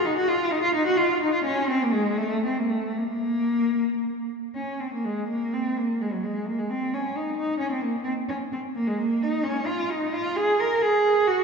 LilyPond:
\new Staff \with { instrumentName = "Cello" } { \time 6/8 \key bes \minor \tempo 4. = 86 ees'16 ges'16 f'8 ees'16 f'16 ees'16 ges'16 f'8 ees'16 f'16 | des'8 c'16 bes16 aes8 a8 c'16 bes16 a8 | bes2~ bes8 r8 | des'8 c'16 bes16 aes8 bes8 c'8 bes8 |
aes16 ges16 aes8 bes16 aes16 c'8 des'8 ees'8 | ees'8 des'16 c'16 bes8 c'8 des'8 c'8 | bes16 aes16 bes8 ees'8 des'8 f'8 ees'8 | \key aes \mixolydian f'8 aes'8 bes'8 aes'4 ges'8 | }